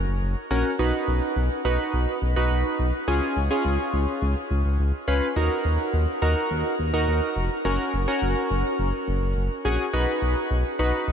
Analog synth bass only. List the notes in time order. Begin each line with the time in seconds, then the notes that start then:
0.08 F#1
0.22 F#1
0.51 A#1
0.79 B1
1.08 B1
1.36 B1
1.65 B1
1.94 B1
2.22 B1
2.36 B1
2.51 B1
2.79 B1
3.08 C#2
3.36 C#2
3.65 C#2
3.93 C#2
4.22 C#2
4.51 C#2
4.65 C#2
4.79 C#2
5.08 C#2
5.36 D#2
5.65 D#2
5.94 D#2
6.22 D#2
6.51 D#2
6.79 D#2
6.94 D#2
7.08 D#2
7.36 F1
7.65 F#1
7.94 F#1
8.22 F#1
8.51 F#1
8.79 F#1
9.08 F#1
9.22 F#1
9.36 F#1
9.65 A#1
9.94 B1
10.22 B1
10.51 B1
10.79 B1
11.08 B1